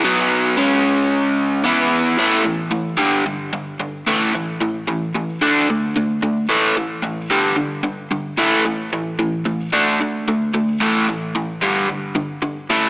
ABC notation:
X:1
M:4/4
L:1/8
Q:1/4=111
K:Amix
V:1 name="Overdriven electric guitar" clef=bass
[B,,F,B,]2 [C,^G,C]4 [E,B,E]2 | [A,,E,A,] [A,,E,] [A,,E,] [G,,D,G,] [G,,D,] [G,,D,] [G,,D,] [A,,E,A,] | [A,,E,] [A,,E,] [A,,E,] [A,,E,] [D,A,D] [D,A,] [D,A,] [D,A,] | [A,,E,A,] [A,,E,] [A,,E,] [G,,D,G,] [G,,D,] [G,,D,] [G,,D,] [A,,E,A,] |
[A,,E,] [A,,E,] [A,,E,] [A,,E,] [D,A,D] [D,A,] [D,A,] [D,A,] | [A,,E,A,] [A,,E,] [A,,E,] [G,,D,G,] [G,,D,] [G,,D,] [G,,D,] [A,,E,A,] |]